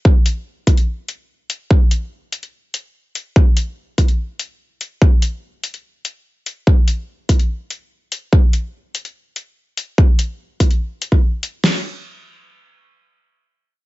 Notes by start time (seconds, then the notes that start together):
0.05 kick
0.26 closed hi-hat
0.67 kick, closed hi-hat
0.77 closed hi-hat
1.08 closed hi-hat
1.50 closed hi-hat
1.71 kick
1.91 closed hi-hat
2.33 closed hi-hat
2.43 closed hi-hat
2.74 closed hi-hat
3.15 closed hi-hat
3.36 kick
3.57 closed hi-hat
3.98 kick, closed hi-hat
4.08 closed hi-hat
4.39 closed hi-hat
4.81 closed hi-hat
5.02 kick
5.22 closed hi-hat
5.64 closed hi-hat
5.74 closed hi-hat
6.05 closed hi-hat
6.46 closed hi-hat
6.67 kick
6.88 closed hi-hat
7.29 kick, closed hi-hat
7.39 closed hi-hat
7.70 closed hi-hat
8.12 closed hi-hat
8.33 kick
8.53 closed hi-hat
8.95 closed hi-hat
9.05 closed hi-hat
9.36 closed hi-hat
9.77 closed hi-hat
9.98 kick
10.19 closed hi-hat
10.60 kick, closed hi-hat
10.71 closed hi-hat
11.02 closed hi-hat
11.12 kick
11.43 closed hi-hat
11.64 snare, crash